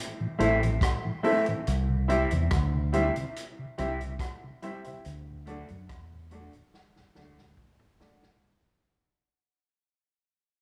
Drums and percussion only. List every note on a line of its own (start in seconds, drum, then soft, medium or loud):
0.40 closed hi-hat medium
0.63 closed hi-hat soft
0.81 kick loud
0.81 cross-stick loud
0.81 closed hi-hat loud
1.24 open hi-hat soft
1.46 closed hi-hat medium
1.67 closed hi-hat medium
2.10 closed hi-hat medium
2.31 closed hi-hat medium
2.51 kick loud
2.51 cross-stick loud
2.51 closed hi-hat loud
2.93 closed hi-hat medium
3.16 closed hi-hat medium
3.36 closed hi-hat medium
3.78 closed hi-hat medium
4.01 closed hi-hat soft
4.19 kick loud
4.19 cross-stick loud
4.19 closed hi-hat loud
4.62 closed hi-hat medium
4.84 closed hi-hat medium
5.05 closed hi-hat medium
5.47 closed hi-hat medium
5.68 closed hi-hat medium
5.89 kick loud
5.89 cross-stick loud
5.89 closed hi-hat loud
6.31 closed hi-hat medium
6.53 closed hi-hat soft
6.74 snare medium
6.96 snare soft
7.15 snare medium
7.38 snare medium
7.57 kick loud
7.57 mid tom medium
7.79 mid tom medium
8.00 snare loud
8.23 snare medium